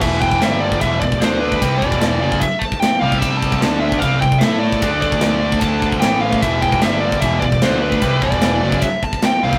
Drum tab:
CC |x---------------|----------------|----------------|----------------|
RD |----b---b---b---|b---b---b---b---|b---b---b---b---|b---b---b---b---|
SD |----o-------o---|----o-------o---|----o-------o---|----o-------o---|
BD |o-oo---oo-oo---o|o-oo---oo-oo---o|o-oo---oo-oo---o|o-oo---oo-oo---o|

CC |----------------|----------------|
RD |b---b---b---b---|b---b---b---b---|
SD |----o-------o---|----o-------o---|
BD |o-oo---oo-oo---o|o-oo---oo-oo---o|